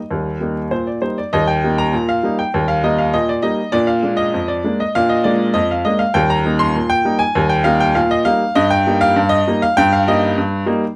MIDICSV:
0, 0, Header, 1, 2, 480
1, 0, Start_track
1, 0, Key_signature, -3, "major"
1, 0, Tempo, 604230
1, 79, Time_signature, 2, 2, 24, 8
1, 8706, End_track
2, 0, Start_track
2, 0, Title_t, "Upright piano"
2, 0, Program_c, 0, 0
2, 0, Note_on_c, 0, 75, 72
2, 84, Note_on_c, 0, 39, 64
2, 103, Note_on_c, 0, 55, 46
2, 231, Note_off_c, 0, 55, 0
2, 262, Control_c, 0, 64, 127
2, 289, Note_off_c, 0, 39, 0
2, 323, Note_on_c, 0, 55, 42
2, 327, Note_on_c, 0, 58, 41
2, 333, Note_on_c, 0, 63, 44
2, 457, Note_off_c, 0, 55, 0
2, 459, Note_off_c, 0, 58, 0
2, 464, Note_off_c, 0, 63, 0
2, 564, Note_off_c, 0, 75, 0
2, 566, Note_on_c, 0, 72, 69
2, 567, Note_on_c, 0, 46, 59
2, 571, Control_c, 0, 64, 0
2, 687, Note_off_c, 0, 72, 0
2, 691, Note_on_c, 0, 74, 53
2, 773, Note_off_c, 0, 46, 0
2, 807, Note_on_c, 0, 72, 66
2, 808, Note_on_c, 0, 55, 39
2, 808, Note_on_c, 0, 58, 33
2, 810, Note_off_c, 0, 74, 0
2, 812, Note_on_c, 0, 63, 42
2, 928, Note_off_c, 0, 72, 0
2, 937, Note_on_c, 0, 74, 68
2, 940, Note_off_c, 0, 55, 0
2, 941, Note_off_c, 0, 58, 0
2, 944, Note_off_c, 0, 63, 0
2, 1053, Note_off_c, 0, 74, 0
2, 1054, Note_on_c, 0, 75, 94
2, 1058, Note_on_c, 0, 39, 90
2, 1069, Note_on_c, 0, 55, 58
2, 1172, Note_off_c, 0, 75, 0
2, 1172, Note_on_c, 0, 79, 93
2, 1196, Note_off_c, 0, 55, 0
2, 1220, Control_c, 0, 64, 127
2, 1259, Note_off_c, 0, 39, 0
2, 1303, Note_on_c, 0, 55, 50
2, 1306, Note_on_c, 0, 58, 54
2, 1310, Note_on_c, 0, 63, 54
2, 1411, Note_off_c, 0, 79, 0
2, 1417, Note_on_c, 0, 82, 96
2, 1432, Note_off_c, 0, 55, 0
2, 1433, Note_off_c, 0, 58, 0
2, 1436, Note_off_c, 0, 63, 0
2, 1535, Note_on_c, 0, 46, 76
2, 1540, Control_c, 0, 64, 0
2, 1653, Note_off_c, 0, 82, 0
2, 1658, Note_on_c, 0, 77, 91
2, 1737, Note_off_c, 0, 46, 0
2, 1774, Note_on_c, 0, 55, 54
2, 1779, Note_on_c, 0, 58, 56
2, 1787, Note_on_c, 0, 63, 60
2, 1894, Note_off_c, 0, 77, 0
2, 1897, Note_on_c, 0, 79, 80
2, 1905, Note_off_c, 0, 55, 0
2, 1908, Note_off_c, 0, 58, 0
2, 1914, Note_off_c, 0, 63, 0
2, 2018, Note_on_c, 0, 39, 88
2, 2032, Note_on_c, 0, 55, 52
2, 2129, Note_on_c, 0, 77, 88
2, 2133, Note_off_c, 0, 79, 0
2, 2158, Note_off_c, 0, 55, 0
2, 2173, Control_c, 0, 64, 127
2, 2219, Note_off_c, 0, 39, 0
2, 2249, Note_off_c, 0, 77, 0
2, 2254, Note_on_c, 0, 55, 53
2, 2254, Note_on_c, 0, 75, 85
2, 2258, Note_on_c, 0, 58, 56
2, 2259, Note_on_c, 0, 63, 66
2, 2371, Note_on_c, 0, 77, 85
2, 2372, Note_off_c, 0, 75, 0
2, 2385, Note_off_c, 0, 55, 0
2, 2388, Note_off_c, 0, 58, 0
2, 2389, Note_off_c, 0, 63, 0
2, 2490, Note_on_c, 0, 75, 94
2, 2491, Note_off_c, 0, 77, 0
2, 2494, Note_on_c, 0, 46, 77
2, 2498, Control_c, 0, 64, 0
2, 2611, Note_off_c, 0, 75, 0
2, 2614, Note_on_c, 0, 74, 83
2, 2697, Note_off_c, 0, 46, 0
2, 2721, Note_on_c, 0, 75, 89
2, 2726, Note_on_c, 0, 55, 57
2, 2728, Note_on_c, 0, 58, 53
2, 2732, Note_on_c, 0, 63, 54
2, 2733, Note_off_c, 0, 74, 0
2, 2860, Note_off_c, 0, 55, 0
2, 2861, Note_off_c, 0, 58, 0
2, 2864, Note_off_c, 0, 63, 0
2, 2957, Note_on_c, 0, 74, 107
2, 2962, Note_on_c, 0, 46, 92
2, 2967, Note_off_c, 0, 75, 0
2, 2977, Note_on_c, 0, 62, 67
2, 3075, Note_on_c, 0, 77, 88
2, 3084, Note_off_c, 0, 74, 0
2, 3108, Note_off_c, 0, 62, 0
2, 3147, Control_c, 0, 64, 127
2, 3170, Note_off_c, 0, 46, 0
2, 3198, Note_on_c, 0, 56, 50
2, 3201, Note_on_c, 0, 58, 54
2, 3206, Note_on_c, 0, 62, 60
2, 3310, Note_on_c, 0, 75, 94
2, 3323, Note_off_c, 0, 77, 0
2, 3334, Note_off_c, 0, 56, 0
2, 3336, Note_off_c, 0, 58, 0
2, 3339, Note_off_c, 0, 62, 0
2, 3447, Note_on_c, 0, 41, 74
2, 3461, Control_c, 0, 64, 0
2, 3559, Note_on_c, 0, 74, 84
2, 3560, Note_off_c, 0, 75, 0
2, 3652, Note_off_c, 0, 41, 0
2, 3687, Note_on_c, 0, 56, 54
2, 3693, Note_on_c, 0, 58, 54
2, 3694, Note_on_c, 0, 62, 58
2, 3804, Note_off_c, 0, 74, 0
2, 3813, Note_on_c, 0, 75, 86
2, 3819, Note_off_c, 0, 56, 0
2, 3823, Note_off_c, 0, 58, 0
2, 3824, Note_off_c, 0, 62, 0
2, 3931, Note_off_c, 0, 75, 0
2, 3934, Note_on_c, 0, 77, 106
2, 3939, Note_on_c, 0, 46, 89
2, 3954, Note_on_c, 0, 62, 61
2, 4045, Note_on_c, 0, 75, 89
2, 4051, Note_off_c, 0, 77, 0
2, 4067, Control_c, 0, 64, 127
2, 4079, Note_off_c, 0, 62, 0
2, 4138, Note_off_c, 0, 46, 0
2, 4163, Note_on_c, 0, 74, 92
2, 4167, Note_off_c, 0, 75, 0
2, 4169, Note_on_c, 0, 56, 63
2, 4174, Note_on_c, 0, 58, 52
2, 4174, Note_on_c, 0, 62, 62
2, 4301, Note_off_c, 0, 56, 0
2, 4304, Note_off_c, 0, 58, 0
2, 4304, Note_off_c, 0, 62, 0
2, 4399, Note_on_c, 0, 75, 101
2, 4405, Note_off_c, 0, 74, 0
2, 4408, Note_on_c, 0, 41, 77
2, 4419, Control_c, 0, 64, 0
2, 4523, Note_off_c, 0, 75, 0
2, 4538, Note_on_c, 0, 77, 78
2, 4612, Note_off_c, 0, 41, 0
2, 4646, Note_on_c, 0, 75, 89
2, 4652, Note_on_c, 0, 56, 54
2, 4653, Note_off_c, 0, 77, 0
2, 4657, Note_on_c, 0, 58, 55
2, 4660, Note_on_c, 0, 62, 52
2, 4758, Note_on_c, 0, 77, 93
2, 4766, Note_off_c, 0, 75, 0
2, 4782, Note_off_c, 0, 56, 0
2, 4786, Note_off_c, 0, 58, 0
2, 4788, Note_off_c, 0, 62, 0
2, 4877, Note_on_c, 0, 79, 102
2, 4882, Note_off_c, 0, 77, 0
2, 4882, Note_on_c, 0, 39, 96
2, 4896, Note_on_c, 0, 55, 67
2, 5001, Note_off_c, 0, 79, 0
2, 5004, Note_on_c, 0, 82, 100
2, 5025, Note_off_c, 0, 55, 0
2, 5037, Control_c, 0, 64, 127
2, 5087, Note_off_c, 0, 39, 0
2, 5124, Note_on_c, 0, 55, 60
2, 5124, Note_on_c, 0, 58, 61
2, 5130, Note_on_c, 0, 63, 64
2, 5236, Note_on_c, 0, 84, 114
2, 5244, Note_off_c, 0, 82, 0
2, 5256, Note_off_c, 0, 55, 0
2, 5256, Note_off_c, 0, 58, 0
2, 5260, Note_off_c, 0, 63, 0
2, 5365, Note_on_c, 0, 46, 78
2, 5373, Control_c, 0, 64, 0
2, 5478, Note_on_c, 0, 79, 107
2, 5480, Note_off_c, 0, 84, 0
2, 5568, Note_off_c, 0, 46, 0
2, 5599, Note_on_c, 0, 55, 55
2, 5602, Note_on_c, 0, 58, 57
2, 5605, Note_on_c, 0, 63, 68
2, 5711, Note_on_c, 0, 80, 102
2, 5721, Note_off_c, 0, 79, 0
2, 5732, Note_off_c, 0, 55, 0
2, 5734, Note_off_c, 0, 58, 0
2, 5737, Note_off_c, 0, 63, 0
2, 5842, Note_on_c, 0, 39, 100
2, 5859, Note_on_c, 0, 55, 62
2, 5953, Note_on_c, 0, 79, 100
2, 5956, Note_off_c, 0, 80, 0
2, 5986, Note_off_c, 0, 55, 0
2, 5992, Control_c, 0, 64, 127
2, 6046, Note_off_c, 0, 39, 0
2, 6070, Note_on_c, 0, 77, 105
2, 6078, Note_off_c, 0, 79, 0
2, 6080, Note_on_c, 0, 55, 65
2, 6082, Note_on_c, 0, 63, 67
2, 6083, Note_on_c, 0, 58, 60
2, 6196, Note_off_c, 0, 77, 0
2, 6199, Note_on_c, 0, 79, 103
2, 6212, Note_off_c, 0, 55, 0
2, 6214, Note_off_c, 0, 63, 0
2, 6215, Note_off_c, 0, 58, 0
2, 6315, Note_on_c, 0, 77, 94
2, 6319, Note_on_c, 0, 46, 83
2, 6320, Note_off_c, 0, 79, 0
2, 6331, Control_c, 0, 64, 0
2, 6438, Note_off_c, 0, 77, 0
2, 6441, Note_on_c, 0, 75, 101
2, 6524, Note_off_c, 0, 46, 0
2, 6553, Note_on_c, 0, 77, 104
2, 6558, Note_on_c, 0, 55, 59
2, 6561, Note_off_c, 0, 75, 0
2, 6562, Note_on_c, 0, 58, 60
2, 6566, Note_on_c, 0, 63, 60
2, 6691, Note_off_c, 0, 55, 0
2, 6693, Note_off_c, 0, 58, 0
2, 6697, Note_off_c, 0, 63, 0
2, 6795, Note_on_c, 0, 75, 111
2, 6796, Note_off_c, 0, 77, 0
2, 6798, Note_on_c, 0, 43, 111
2, 6915, Note_on_c, 0, 79, 105
2, 6917, Note_off_c, 0, 75, 0
2, 6975, Control_c, 0, 64, 127
2, 7002, Note_off_c, 0, 43, 0
2, 7045, Note_on_c, 0, 55, 62
2, 7049, Note_on_c, 0, 58, 60
2, 7051, Note_on_c, 0, 63, 64
2, 7156, Note_off_c, 0, 79, 0
2, 7157, Note_on_c, 0, 77, 116
2, 7175, Note_off_c, 0, 55, 0
2, 7177, Note_off_c, 0, 58, 0
2, 7179, Note_off_c, 0, 63, 0
2, 7277, Note_on_c, 0, 43, 96
2, 7288, Control_c, 0, 64, 0
2, 7383, Note_on_c, 0, 75, 111
2, 7397, Note_off_c, 0, 77, 0
2, 7481, Note_off_c, 0, 43, 0
2, 7527, Note_on_c, 0, 55, 57
2, 7529, Note_on_c, 0, 63, 72
2, 7530, Note_on_c, 0, 58, 64
2, 7630, Note_off_c, 0, 75, 0
2, 7644, Note_on_c, 0, 77, 104
2, 7656, Note_off_c, 0, 55, 0
2, 7658, Note_off_c, 0, 58, 0
2, 7658, Note_off_c, 0, 63, 0
2, 7760, Note_on_c, 0, 79, 127
2, 7761, Note_off_c, 0, 77, 0
2, 7767, Note_on_c, 0, 43, 111
2, 7879, Note_off_c, 0, 79, 0
2, 7885, Note_on_c, 0, 77, 102
2, 7900, Control_c, 0, 64, 127
2, 7967, Note_off_c, 0, 43, 0
2, 8001, Note_off_c, 0, 77, 0
2, 8005, Note_on_c, 0, 58, 60
2, 8006, Note_on_c, 0, 75, 99
2, 8007, Note_on_c, 0, 55, 61
2, 8012, Note_on_c, 0, 63, 75
2, 8135, Note_off_c, 0, 58, 0
2, 8136, Note_off_c, 0, 55, 0
2, 8139, Note_off_c, 0, 63, 0
2, 8241, Note_off_c, 0, 75, 0
2, 8242, Note_on_c, 0, 43, 86
2, 8243, Control_c, 0, 64, 0
2, 8444, Note_off_c, 0, 43, 0
2, 8471, Note_on_c, 0, 55, 64
2, 8473, Note_on_c, 0, 58, 72
2, 8476, Note_on_c, 0, 63, 70
2, 8604, Note_off_c, 0, 55, 0
2, 8606, Note_off_c, 0, 58, 0
2, 8608, Note_off_c, 0, 63, 0
2, 8706, End_track
0, 0, End_of_file